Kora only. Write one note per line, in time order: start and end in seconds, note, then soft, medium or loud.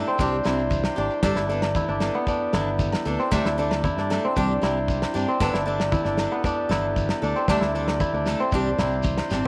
0.00 0.20 D4 medium
0.00 0.45 E4 medium
0.08 1.88 C4 medium
0.20 0.98 D4 medium
0.46 1.36 E4 medium
0.98 1.23 D4 medium
1.23 1.48 D4 medium
1.36 1.75 E4 medium
1.49 1.88 D4 medium
1.76 2.54 E4 medium
1.89 2.27 D4 medium
2.15 3.25 B3 medium
2.28 3.06 D4 medium
2.54 3.45 E4 medium
3.07 3.32 D4 medium
3.19 4.24 C4 medium
3.33 3.59 D4 medium
3.45 3.84 E4 medium
3.59 3.98 D4 medium
3.84 4.63 E4 medium
3.99 4.36 D4 medium
4.25 5.28 C4 medium
4.37 5.15 D4 medium
4.63 5.53 E4 medium
5.15 5.40 D4 medium
5.28 6.38 C4 medium
5.41 5.66 D4 medium
5.53 5.91 E4 medium
5.67 6.04 D4 medium
5.92 6.71 E4 medium
6.05 6.44 D4 medium
6.32 7.42 B3 medium
6.45 7.23 D4 medium
6.71 7.60 E4 medium
7.23 7.48 D4 medium
7.36 8.40 C4 medium
7.48 7.74 D4 medium
7.61 8.00 E4 medium
7.75 8.14 D4 medium
8.01 8.79 E4 medium
8.14 8.52 D4 medium
8.40 9.45 C4 medium
8.53 9.31 D4 medium
8.79 9.47 E4 medium
9.32 9.47 D4 medium